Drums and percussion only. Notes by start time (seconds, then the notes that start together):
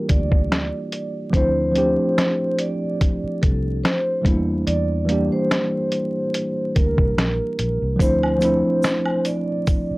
0.09 kick, closed hi-hat
0.32 kick
0.52 finger snap, snare, closed hi-hat
0.92 closed hi-hat
1.33 kick, closed hi-hat
1.75 closed hi-hat
2.18 finger snap, snare, closed hi-hat
2.59 closed hi-hat
3.01 kick, closed hi-hat
3.43 kick, closed hi-hat
3.85 finger snap, snare, closed hi-hat
4.25 kick, closed hi-hat
4.67 closed hi-hat
5.09 closed hi-hat
5.51 finger snap, snare, closed hi-hat
5.92 closed hi-hat
6.34 closed hi-hat
6.76 kick, closed hi-hat
6.98 kick
7.18 finger snap, snare, closed hi-hat
7.59 closed hi-hat
7.99 kick, closed hi-hat, shaker
8.23 high woodblock
8.41 closed hi-hat, shaker
8.83 finger snap, snare, closed hi-hat, shaker
9.05 high woodblock
9.25 closed hi-hat, shaker
9.67 kick, closed hi-hat, shaker